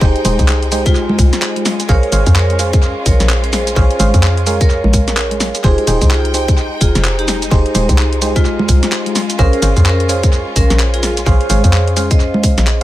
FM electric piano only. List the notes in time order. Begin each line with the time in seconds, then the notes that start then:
0.01 D#4 G4 G#4 C5
0.25 D#4 G4 G#4 C5
0.39 D#4 G4 G#4 C5
0.72 D#4 G4 G#4 C5
1.89 G#4 C5 C#5 F5
2.12 G#4 C5 C#5 F5
2.27 G#4 C5 C#5 F5
2.59 G#4 C5 C#5 F5
3.76 G#4 C5 C#5 F5
4.00 G#4 C5 C#5 F5
4.14 G#4 C5 C#5 F5
4.47 G#4 A#4 C#5 F5
5.64 D#4 G4 G#4 C5
5.87 D#4 G4 G#4 C5
6.02 D#4 G4 G#4 C5
6.34 D#4 G4 G#4 C5
7.51 D#4 G4 G#4 C5
7.75 D#4 G4 G#4 C5
7.89 D#4 G4 G#4 C5
8.22 D#4 G4 G#4 C5
9.39 G#4 C5 C#5 F5
9.62 G#4 C5 C#5 F5
9.77 G#4 C5 C#5 F5
10.09 G#4 C5 C#5 F5
11.26 G#4 C5 C#5 F5
11.50 G#4 C5 C#5 F5
11.64 G#4 C5 C#5 F5
11.97 C#4 G#4 C5 F5